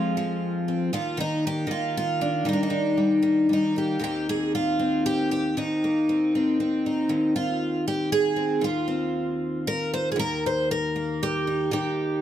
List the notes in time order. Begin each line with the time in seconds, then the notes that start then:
Already playing: F2 F3 G#3 C4 F4
0.17 F3
0.68 C4
0.93 D#2 F4
1.17 D#3 D#4
1.47 G4
1.67 D#3
1.71 F4
1.97 F4
2.21 D4
2.45 D#2 D#3 G3 D#4
2.53 D4
2.63 D#4
2.70 D#3
2.97 G3
3.22 D#3
3.49 G3
3.53 D#4
3.76 A#3 G4
3.99 D#2 D#3 A#3 C4
4.04 G4
4.29 G#4
4.55 F4
4.79 C4
5.06 G4
5.31 G4
5.57 D#2 D#4
5.84 A#3
6.09 C4
6.35 C4
6.60 C4
6.86 D#4
7.09 D#2
7.36 F4
7.88 G4
8.12 G#4
8.36 C4
8.61 D#2 F4
8.88 C4
9.67 A#4
9.94 C5
10.12 G#4
10.16 D#2 A#4
10.46 C5
10.71 A#4
10.96 A#3
11.23 G4
11.47 D#4
11.71 D#2 G4